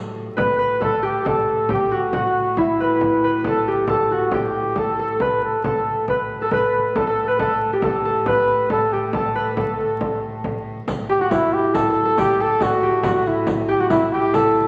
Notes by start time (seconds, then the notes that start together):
Already playing: A2 G4 A4
0.37 A2 B4, frame drum
0.59 B4
0.80 A4, frame drum
1.03 G4
1.25 A4, frame drum
1.48 frame drum
1.69 G4, frame drum
1.73 G4
1.91 F#4
2.13 F#4, frame drum
2.57 E4, frame drum
2.79 B4, frame drum
3.01 frame drum
3.24 B4
3.44 A4, frame drum
3.68 G4
3.87 A4, frame drum
4.10 F#4, frame drum
4.32 G4, frame drum
4.76 A4, frame drum
4.99 A4
5.20 B4, frame drum
5.43 A4
5.64 A2 A4, frame drum
6.08 B4, frame drum
6.42 A4
6.51 B4, frame drum
6.74 frame drum
6.96 A4, frame drum
7.07 A4
7.28 B4
7.39 A4, frame drum
7.73 G4
7.82 A4, frame drum
8.05 A4, frame drum
8.26 B4, frame drum
8.70 A4, frame drum
8.92 G4
9.13 A4, frame drum
9.35 B4, frame drum
9.52 B4
9.57 A4, frame drum
9.79 frame drum
10.01 frame drum
10.44 frame drum
10.87 A2, riq, frame drum
11.09 G4
11.20 F#4
11.31 E4, riq, frame drum
11.53 G4, frame drum
11.74 A4, riq, frame drum
11.90 A4
11.96 riq, frame drum
12.05 A4
12.18 G4, riq, frame drum
12.40 A4
12.60 F#4, riq, frame drum
12.82 G4, frame drum
13.03 F#4, riq, frame drum
13.26 E4, riq, frame drum
13.47 riq, frame drum
13.68 G4
13.80 F#4
13.90 E4, riq, frame drum
14.13 G4, frame drum
14.34 A4, riq, frame drum
14.55 riq, frame drum